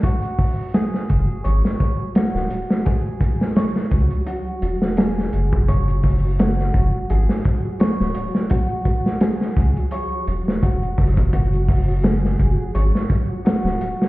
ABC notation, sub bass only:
X:1
M:4/4
L:1/16
Q:"Swing 16ths" 1/4=85
K:Dlyd
V:1 name="Sub bass" clef=bass
z6 F,,, z G,,, z4 D,,, z2 | z6 C,, z3 E,,,4 F,,,2- | F,,,6 F,,, z G,,, z4 D,,, z2 | z6 C,, z3 E,,,4 F,,,2- |
F,,,6 F,,, z G,,, z4 D,,, z2 |]